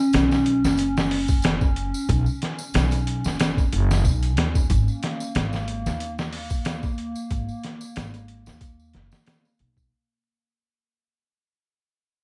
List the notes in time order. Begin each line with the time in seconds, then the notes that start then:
Already playing: C#4
0.13 B1, snare, closed hi-hat, tambourine
0.31 snare, tambourine
0.46 closed hi-hat
0.64 F#1, snare, tambourine
0.77 closed hi-hat, tambourine
0.97 snare, tambourine
1.11 open hi-hat
1.28 kick, tambourine
1.42 snare, closed hi-hat, tambourine
1.61 kick, tambourine
1.76 closed hi-hat
1.94 tambourine
2.09 B1, kick, closed hi-hat, tambourine
2.26 tambourine
2.42 snare, closed hi-hat
2.59 tambourine
2.74 B1, snare, closed hi-hat, tambourine
2.91 closed hi-hat, tambourine
3.07 closed hi-hat
3.24 F#1, snare, tambourine
3.40 snare, closed hi-hat, tambourine
3.57 kick, tambourine
3.72 F#1, closed hi-hat
3.91 snare, tambourine
4.05 B1, kick, tambourine
4.22 closed hi-hat, tambourine
4.37 D#2, snare, closed hi-hat
4.55 kick, tambourine
4.70 G#1 A#3, kick, closed hi-hat, tambourine
4.88 tambourine
5.03 snare, closed hi-hat
5.20 tambourine
5.35 G#1, snare, closed hi-hat, tambourine
5.53 snare, tambourine
5.68 closed hi-hat
5.86 D#2, snare, tambourine
6.00 closed hi-hat, tambourine
6.18 snare, tambourine
6.33 open hi-hat
6.50 kick, tambourine
6.65 snare, closed hi-hat, tambourine
6.83 kick, tambourine
6.98 closed hi-hat
7.16 tambourine
7.30 G#1, kick, closed hi-hat, tambourine
7.48 tambourine
7.63 snare, closed hi-hat
7.81 tambourine
7.96 G#1, snare, closed hi-hat, tambourine
8.14 closed hi-hat, tambourine
8.28 closed hi-hat
8.46 D#2, snare, tambourine
8.61 kick, closed hi-hat, tambourine
8.80 tambourine
8.93 F#1, snare, closed hi-hat
9.12 snare, tambourine
9.26 snare, closed hi-hat, tambourine
9.45 tambourine
9.59 B1, closed hi-hat
9.77 kick, tambourine